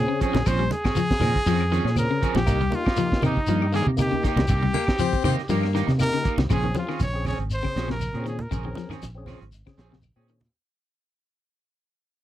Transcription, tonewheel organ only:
0, 0, Header, 1, 2, 480
1, 0, Start_track
1, 0, Tempo, 503778
1, 440, Time_signature, 4, 2, 24, 8
1, 11657, End_track
2, 0, Start_track
2, 0, Title_t, "Tonewheel organ"
2, 0, Program_c, 0, 16
2, 0, Note_on_c, 0, 60, 91
2, 0, Note_on_c, 0, 61, 84
2, 0, Note_on_c, 0, 68, 101
2, 399, Note_off_c, 0, 60, 0
2, 407, Note_off_c, 0, 61, 0
2, 410, Note_off_c, 0, 68, 0
2, 1758, Note_on_c, 0, 61, 90
2, 1774, Note_on_c, 0, 68, 108
2, 1816, Note_off_c, 0, 61, 0
2, 1823, Note_off_c, 0, 68, 0
2, 1865, Note_on_c, 0, 60, 84
2, 1880, Note_on_c, 0, 61, 74
2, 1884, Note_on_c, 0, 68, 90
2, 2098, Note_off_c, 0, 60, 0
2, 2105, Note_off_c, 0, 61, 0
2, 2107, Note_off_c, 0, 68, 0
2, 2345, Note_on_c, 0, 58, 85
2, 2348, Note_on_c, 0, 63, 81
2, 2364, Note_on_c, 0, 67, 98
2, 2472, Note_off_c, 0, 58, 0
2, 2474, Note_off_c, 0, 63, 0
2, 2482, Note_off_c, 0, 67, 0
2, 2576, Note_on_c, 0, 58, 80
2, 2587, Note_on_c, 0, 63, 79
2, 2599, Note_on_c, 0, 67, 98
2, 2708, Note_off_c, 0, 58, 0
2, 2713, Note_off_c, 0, 63, 0
2, 2719, Note_off_c, 0, 67, 0
2, 2818, Note_on_c, 0, 58, 75
2, 2831, Note_on_c, 0, 63, 70
2, 2837, Note_on_c, 0, 67, 85
2, 3112, Note_off_c, 0, 58, 0
2, 3118, Note_off_c, 0, 63, 0
2, 3121, Note_off_c, 0, 67, 0
2, 3436, Note_on_c, 0, 63, 86
2, 3447, Note_on_c, 0, 67, 100
2, 3494, Note_off_c, 0, 63, 0
2, 3500, Note_off_c, 0, 67, 0
2, 3545, Note_on_c, 0, 58, 74
2, 3556, Note_on_c, 0, 63, 63
2, 3565, Note_on_c, 0, 67, 84
2, 3672, Note_off_c, 0, 58, 0
2, 3678, Note_off_c, 0, 63, 0
2, 3682, Note_off_c, 0, 67, 0
2, 3780, Note_on_c, 0, 58, 90
2, 3789, Note_on_c, 0, 63, 86
2, 3796, Note_on_c, 0, 67, 103
2, 4240, Note_off_c, 0, 58, 0
2, 4244, Note_off_c, 0, 63, 0
2, 4248, Note_off_c, 0, 67, 0
2, 5592, Note_on_c, 0, 63, 88
2, 5609, Note_on_c, 0, 67, 97
2, 5651, Note_off_c, 0, 63, 0
2, 5660, Note_off_c, 0, 67, 0
2, 5700, Note_on_c, 0, 58, 76
2, 5709, Note_on_c, 0, 63, 68
2, 5723, Note_on_c, 0, 67, 86
2, 5934, Note_off_c, 0, 58, 0
2, 5939, Note_off_c, 0, 63, 0
2, 5946, Note_off_c, 0, 67, 0
2, 6321, Note_on_c, 0, 60, 70
2, 6331, Note_on_c, 0, 61, 62
2, 6335, Note_on_c, 0, 68, 76
2, 6546, Note_off_c, 0, 60, 0
2, 6551, Note_off_c, 0, 61, 0
2, 6554, Note_off_c, 0, 68, 0
2, 6797, Note_on_c, 0, 60, 88
2, 6807, Note_on_c, 0, 61, 73
2, 6818, Note_on_c, 0, 68, 92
2, 7024, Note_off_c, 0, 60, 0
2, 7029, Note_off_c, 0, 61, 0
2, 7035, Note_off_c, 0, 68, 0
2, 7275, Note_on_c, 0, 60, 69
2, 7289, Note_on_c, 0, 61, 60
2, 7293, Note_on_c, 0, 68, 80
2, 7504, Note_off_c, 0, 60, 0
2, 7511, Note_off_c, 0, 61, 0
2, 7512, Note_off_c, 0, 68, 0
2, 7761, Note_on_c, 0, 60, 83
2, 7769, Note_on_c, 0, 61, 79
2, 7774, Note_on_c, 0, 68, 92
2, 7987, Note_off_c, 0, 60, 0
2, 7991, Note_off_c, 0, 61, 0
2, 7993, Note_off_c, 0, 68, 0
2, 8236, Note_on_c, 0, 60, 72
2, 8245, Note_on_c, 0, 61, 61
2, 8255, Note_on_c, 0, 68, 76
2, 8464, Note_off_c, 0, 60, 0
2, 8469, Note_off_c, 0, 61, 0
2, 8474, Note_off_c, 0, 68, 0
2, 8719, Note_on_c, 0, 60, 104
2, 8733, Note_on_c, 0, 61, 86
2, 8743, Note_on_c, 0, 68, 109
2, 8946, Note_off_c, 0, 60, 0
2, 8953, Note_off_c, 0, 61, 0
2, 8958, Note_off_c, 0, 68, 0
2, 9203, Note_on_c, 0, 60, 76
2, 9212, Note_on_c, 0, 61, 75
2, 9217, Note_on_c, 0, 68, 92
2, 9428, Note_off_c, 0, 60, 0
2, 9433, Note_off_c, 0, 61, 0
2, 9435, Note_off_c, 0, 68, 0
2, 9680, Note_on_c, 0, 60, 101
2, 9686, Note_on_c, 0, 61, 85
2, 9702, Note_on_c, 0, 68, 102
2, 9907, Note_off_c, 0, 60, 0
2, 9910, Note_off_c, 0, 61, 0
2, 9918, Note_off_c, 0, 68, 0
2, 11657, End_track
0, 0, End_of_file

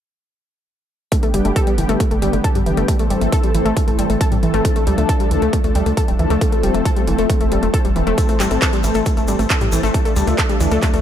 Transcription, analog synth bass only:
0, 0, Header, 1, 2, 480
1, 0, Start_track
1, 0, Key_signature, 0, "minor"
1, 0, Tempo, 441176
1, 1217, Time_signature, 4, 2, 24, 8
1, 11983, End_track
2, 0, Start_track
2, 0, Title_t, "Analog synth bass"
2, 0, Program_c, 0, 38
2, 1457, Note_on_c, 0, 31, 91
2, 1536, Note_off_c, 0, 31, 0
2, 1577, Note_on_c, 0, 31, 79
2, 1656, Note_off_c, 0, 31, 0
2, 1937, Note_on_c, 0, 31, 92
2, 2016, Note_off_c, 0, 31, 0
2, 2058, Note_on_c, 0, 31, 76
2, 2136, Note_off_c, 0, 31, 0
2, 2297, Note_on_c, 0, 31, 78
2, 2376, Note_off_c, 0, 31, 0
2, 2417, Note_on_c, 0, 31, 91
2, 2496, Note_off_c, 0, 31, 0
2, 2537, Note_on_c, 0, 31, 81
2, 2616, Note_off_c, 0, 31, 0
2, 2778, Note_on_c, 0, 43, 74
2, 2857, Note_off_c, 0, 43, 0
2, 2897, Note_on_c, 0, 31, 77
2, 2976, Note_off_c, 0, 31, 0
2, 3017, Note_on_c, 0, 31, 81
2, 3096, Note_off_c, 0, 31, 0
2, 3377, Note_on_c, 0, 33, 89
2, 3456, Note_off_c, 0, 33, 0
2, 3497, Note_on_c, 0, 33, 81
2, 3576, Note_off_c, 0, 33, 0
2, 3858, Note_on_c, 0, 33, 92
2, 3936, Note_off_c, 0, 33, 0
2, 3978, Note_on_c, 0, 33, 75
2, 4056, Note_off_c, 0, 33, 0
2, 4218, Note_on_c, 0, 33, 75
2, 4296, Note_off_c, 0, 33, 0
2, 4337, Note_on_c, 0, 33, 90
2, 4416, Note_off_c, 0, 33, 0
2, 4458, Note_on_c, 0, 33, 80
2, 4536, Note_off_c, 0, 33, 0
2, 4698, Note_on_c, 0, 45, 70
2, 4776, Note_off_c, 0, 45, 0
2, 4818, Note_on_c, 0, 33, 83
2, 4896, Note_off_c, 0, 33, 0
2, 4938, Note_on_c, 0, 33, 84
2, 5017, Note_off_c, 0, 33, 0
2, 5298, Note_on_c, 0, 38, 90
2, 5377, Note_off_c, 0, 38, 0
2, 5418, Note_on_c, 0, 38, 79
2, 5497, Note_off_c, 0, 38, 0
2, 5778, Note_on_c, 0, 38, 91
2, 5856, Note_off_c, 0, 38, 0
2, 5898, Note_on_c, 0, 38, 76
2, 5976, Note_off_c, 0, 38, 0
2, 6137, Note_on_c, 0, 38, 80
2, 6216, Note_off_c, 0, 38, 0
2, 6257, Note_on_c, 0, 38, 93
2, 6336, Note_off_c, 0, 38, 0
2, 6377, Note_on_c, 0, 38, 78
2, 6456, Note_off_c, 0, 38, 0
2, 6617, Note_on_c, 0, 26, 72
2, 6696, Note_off_c, 0, 26, 0
2, 6738, Note_on_c, 0, 38, 84
2, 6816, Note_off_c, 0, 38, 0
2, 6858, Note_on_c, 0, 38, 82
2, 6936, Note_off_c, 0, 38, 0
2, 7218, Note_on_c, 0, 29, 90
2, 7296, Note_off_c, 0, 29, 0
2, 7338, Note_on_c, 0, 29, 83
2, 7416, Note_off_c, 0, 29, 0
2, 7698, Note_on_c, 0, 29, 90
2, 7776, Note_off_c, 0, 29, 0
2, 7818, Note_on_c, 0, 29, 71
2, 7896, Note_off_c, 0, 29, 0
2, 8058, Note_on_c, 0, 29, 74
2, 8136, Note_off_c, 0, 29, 0
2, 8178, Note_on_c, 0, 29, 87
2, 8256, Note_off_c, 0, 29, 0
2, 8298, Note_on_c, 0, 29, 82
2, 8376, Note_off_c, 0, 29, 0
2, 8538, Note_on_c, 0, 29, 73
2, 8616, Note_off_c, 0, 29, 0
2, 8658, Note_on_c, 0, 29, 85
2, 8737, Note_off_c, 0, 29, 0
2, 8778, Note_on_c, 0, 29, 81
2, 8857, Note_off_c, 0, 29, 0
2, 9139, Note_on_c, 0, 33, 91
2, 9217, Note_off_c, 0, 33, 0
2, 9258, Note_on_c, 0, 33, 81
2, 9337, Note_off_c, 0, 33, 0
2, 9618, Note_on_c, 0, 33, 93
2, 9696, Note_off_c, 0, 33, 0
2, 9738, Note_on_c, 0, 33, 73
2, 9816, Note_off_c, 0, 33, 0
2, 9978, Note_on_c, 0, 33, 76
2, 10057, Note_off_c, 0, 33, 0
2, 10098, Note_on_c, 0, 33, 89
2, 10176, Note_off_c, 0, 33, 0
2, 10218, Note_on_c, 0, 33, 80
2, 10296, Note_off_c, 0, 33, 0
2, 10458, Note_on_c, 0, 45, 70
2, 10537, Note_off_c, 0, 45, 0
2, 10578, Note_on_c, 0, 33, 88
2, 10656, Note_off_c, 0, 33, 0
2, 10698, Note_on_c, 0, 33, 78
2, 10776, Note_off_c, 0, 33, 0
2, 11058, Note_on_c, 0, 38, 95
2, 11136, Note_off_c, 0, 38, 0
2, 11178, Note_on_c, 0, 38, 82
2, 11256, Note_off_c, 0, 38, 0
2, 11538, Note_on_c, 0, 38, 93
2, 11616, Note_off_c, 0, 38, 0
2, 11658, Note_on_c, 0, 38, 77
2, 11736, Note_off_c, 0, 38, 0
2, 11898, Note_on_c, 0, 38, 78
2, 11976, Note_off_c, 0, 38, 0
2, 11983, End_track
0, 0, End_of_file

